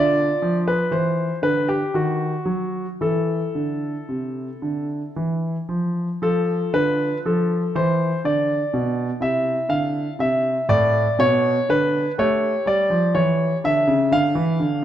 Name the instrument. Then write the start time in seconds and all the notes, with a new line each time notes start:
grand piano
Already playing: D3 F4 D5
0.42 F3
0.68 B4
0.91 E3 C5
1.42 D3 B4
1.68 G4
1.94 D#3 F#4
2.45 F#3
3.01 E3 E4 A4
3.55 D3
4.09 C3
4.62 D3
5.16 E3
5.69 F3
6.22 F3 F4 A4
6.73 D3 B4
7.25 F3 A4
7.75 E3 C5
8.24 D3 D5
8.74 B2
9.20 C3 E4 E5
9.69 D3 F5
10.19 C3 E5
10.69 A2 D5
11.19 B2 C#5
11.69 D3 B4
12.18 A3 G4 C#5
12.66 G3 D5
12.90 F3
13.15 E3 C#5
13.64 D3 E5
13.87 C#3
14.11 D3 F5
14.35 E3
14.60 D3